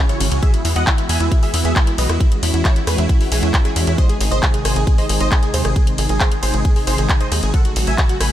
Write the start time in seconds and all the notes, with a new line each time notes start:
0.00 C#3 E3 G#3 F#4
0.09 E4 C#5, closed hi-hat
0.20 G#1 C#3 E3 G#3 C#4 F#4, open hi-hat, ride
0.31 C#2 C#3 E3 G#3 C#4 F#4, closed hi-hat
0.42 E3 G#3 B3 F#4 G#4 E5, kick, closed hi-hat
0.54 E4, closed hi-hat
0.64 E2 E3 G#3 B3 E4 F#4, open hi-hat, ride
0.76 E2 D#5 F#5, closed hi-hat
0.87 E3 G#3 B3 E4 F#4, kick, clap, closed hi-hat
0.98 E4, closed hi-hat
1.09 E2 E3 G#3 B3 F#4 E5 G#5, open hi-hat, ride
1.20 E2 E4, closed hi-hat
1.31 E3 G#3 B3 E4 F#4, kick, closed hi-hat
1.42 E3 G#3 B3 F#4 G#4 E5, open hi-hat
1.53 E2 E3 G#3 B3 E4 F#4, open hi-hat, ride
1.65 E2 G#4 E5, closed hi-hat
1.76 E3 G#3 B3 E4 F#4, kick, clap, closed hi-hat
1.87 E4, closed hi-hat
1.98 B1 E3 G#3 B3 F#4 B4 D#5, open hi-hat, ride
2.09 E2 E3 G#3 B3 E4 F#4, cross-stick, closed hi-hat
2.20 E3 G#3 C#4 E4 F#4, kick, closed hi-hat
2.32 closed hi-hat
2.42 E2 E3 G#3 C#4 E4 F#4, open hi-hat, ride
2.54 E2 E4, closed hi-hat
2.65 E3 G#3 C#4 E4 F#4 C#5, kick, clap, closed hi-hat
2.76 E4, closed hi-hat
2.87 E2 E3 G#3 C#4 F#4 G#4 B4, cross-stick, open hi-hat, ride
2.98 E2 E4, closed hi-hat
3.09 E3 G#3 C#4 E4 F#4, kick, closed hi-hat
3.20 E3 G#3 C#4 E4 F#4, open hi-hat
3.31 B1 E3 G#3 C#4 E4 F#4 G#4, open hi-hat, ride
3.43 E2 E4, closed hi-hat
3.54 E3 G#3 C#4 F#4, kick, clap, closed hi-hat
3.65 E4 G#4, closed hi-hat
3.76 E2 E3 G#3 C#4 E4 F#4, open hi-hat, ride
3.87 E2 E3 G#3 C#4 E4 F#4, closed hi-hat
3.98 C3 D#3 G#3 D#4 C5 D#5, kick, closed hi-hat
4.09 G#4, closed hi-hat
4.20 G#1 C3 D#3 G#3 D#4 G#4, open hi-hat, ride
4.31 G#1 C5 D#5, closed hi-hat
4.43 C3 D#3 G#3 D#4 G#4, kick, clap, closed hi-hat
4.54 G#4, closed hi-hat
4.65 G#1 C3 D#3 G#3 D#4 C5 G#5, cross-stick, open hi-hat, ride
4.76 G#1 G#4, closed hi-hat
4.87 C3 D#3 G#3 D#4 G#4, kick, closed hi-hat
4.98 C3 D#3 G#3 D#4 C5 D#5, open hi-hat
5.09 G#1 C3 D#3 G#3 D#4 G#4, open hi-hat, ride
5.20 G#1 C5 D#5, closed hi-hat
5.31 C3 D#3 G#3 D#4 G#4, kick, clap, closed hi-hat
5.43 G#4, closed hi-hat
5.54 D#2 C3 D#3 G#3 D#4 G#4 C5, open hi-hat, ride
5.65 G#1 C3 D#3 G#3 D#4 G#4, cross-stick, closed hi-hat
5.76 C3 D#3 G#3 D#4 G#4, kick, closed hi-hat
5.87 closed hi-hat
5.98 G#1 C3 D#3 G#3 D#4 G#4, open hi-hat, ride
6.09 G#1 G#4, closed hi-hat
6.20 C3 D#3 G#3 D#4 G#4 C5, kick, clap, closed hi-hat
6.32 G#4, closed hi-hat
6.43 G#1 C3 D#3 G#3 D#4 G#4 C5, open hi-hat, ride
6.54 G#1 G#4, closed hi-hat
6.65 C3 D#3 G#3 D#4 G#4, kick, closed hi-hat
6.76 C3 D#3 G#3 D#4 G#4, open hi-hat
6.87 G#1 C3 D#3 G#3 D#4 G#4 C5, open hi-hat, ride
6.98 G#1 G#4, closed hi-hat
7.09 C3 D#3 G#3 D#4, kick, clap, closed hi-hat
7.21 C5 D#5, closed hi-hat
7.31 D#2 C3 D#3 G#3 D#4 G#4, open hi-hat, ride
7.43 G#1 C3 D#3 G#3 D#4 G#4, closed hi-hat
7.54 C#3 F#3 A3 F#4 A4 F#5, kick, closed hi-hat
7.65 F#4, closed hi-hat
7.76 A1 C#3 F#3 A3 F#4, open hi-hat, ride
7.87 A1 E5 G#5, closed hi-hat
7.98 C#3 F#3 A3 F#4, kick, clap, closed hi-hat
8.09 F#4, closed hi-hat
8.20 A1 C#3 F#3 A3 F#4 G#5 B5, cross-stick, open hi-hat, ride